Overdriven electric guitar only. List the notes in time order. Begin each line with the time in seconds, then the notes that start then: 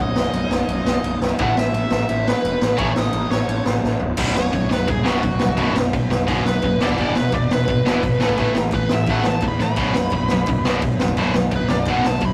1.39 A2 E3 A3
2.78 A2 E3 A3
4.18 B1 F#2 B2
4.35 B1 F#2
4.52 B1 F#2
4.69 B1 F#2
4.87 B1 F#2
5.04 B1 F#2 B2
5.23 B1 F#2
5.41 B1 F#2
5.57 B1 F#2 B2
5.75 B1 F#2
5.93 B1 F#2
6.10 B1 F#2
6.27 B1 F#2 B2
6.45 B1 F#2
6.63 B1 F#2
6.81 E2 B2 E3
6.99 E2 B2 E3
7.16 E2 B2
7.34 E2 B2
7.52 E2 B2
7.68 E2 B2
7.85 E2 B2 E3
8.02 E2 B2
8.20 A2 E3 A3
8.38 A2 E3 A3
8.56 A2 E3
8.74 A2 E3
8.93 A2 E3
9.09 A2 E3 A3
9.27 A2 E3
9.43 A2 E3
9.60 A2 E3
9.77 B1 F#2 B2
9.95 B1 F#2
10.12 B1 F#2
10.31 B1 F#2
10.48 B1 F#2
10.65 B1 F#2 B2
10.82 B1 F#2
11.01 B1 F#2
11.17 B1 F#2 B2
11.35 B1 F#2
11.52 B1 F#2
11.70 B1 F#2
11.88 B1 F#2 B2
12.05 B1 F#2
12.22 B1 F#2